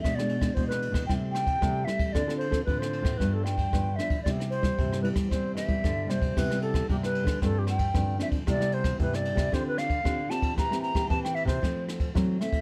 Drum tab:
CC |----------------|----------------|----------------|x---------------|
RD |x-xxx-xxx-xxx-xx|x-xxx-xxx-xxx-xx|x-xxx-xxx-xxx-xx|--xxx-xxx-xxx-xx|
SD |rr-r-r-rr-r-r-r-|rr-r-r-rr-r-r-r-|rr-r-r-rr-r-r-r-|rr-r-r-rr-r-r-r-|
BD |o--oo--oo--oo--o|o--oo--oo--oo--o|o--oo--oo--oo--o|o--oo--oo--oo--o|

CC |----------------|----------------|
RD |x-xxx-xxx-xxx-xx|x-xxx-xxx-xxx-xx|
SD |rr-r-r-rr-r-r-r-|rr-r-r-rr-r-r-r-|
BD |o--oo--oo--oo--o|o--oo--oo--oo--o|